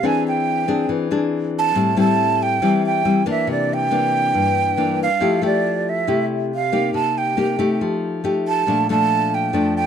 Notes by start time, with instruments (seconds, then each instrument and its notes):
0.03 nylon-string guitar E3 C4 D4 G#4, flute G#5
0.28 flute G5
0.68 nylon-string guitar C4 D4 G#4
0.89 nylon-string guitar E3
1.11 nylon-string guitar C4 D4 G#4
1.59 flute A5
1.75 nylon-string guitar A2 G3 C4 E4
1.96 nylon-string guitar G3 C4 E4, flute A5
2.43 flute G5
2.62 nylon-string guitar E3 G3 C4 E4
2.86 flute G5
3.05 nylon-string guitar G3 C4 E4
3.26 nylon-string guitar E3 A#3 D4
3.30 flute E5
3.47 nylon-string guitar C3, flute D5
3.74 flute G5
3.91 nylon-string guitar E3 A#3 D4
4.34 nylon-string guitar G2
4.77 nylon-string guitar E3 A#3 D4
5.03 flute F5
5.20 nylon-string guitar F3 A3 E4 G4
5.42 nylon-string guitar A3 E4 G4
5.46 flute D5
5.89 flute E5
6.07 nylon-string guitar C3 A3 E4 G4
6.55 flute F5
6.72 nylon-string guitar A#3 D#4 G4
6.94 nylon-string guitar C3, flute A5
7.18 flute G5
7.37 nylon-string guitar A#3 D#4 G4
7.59 nylon-string guitar A3 D#4 G4
7.81 nylon-string guitar F3
8.24 nylon-string guitar A3 D#4 G4
8.48 flute A5
8.67 nylon-string guitar A#2 F3 A3 D4
8.89 nylon-string guitar F3 A3 D4, flute A5
9.34 flute G5
9.53 nylon-string guitar F2 F3 A3 D4
9.77 flute G5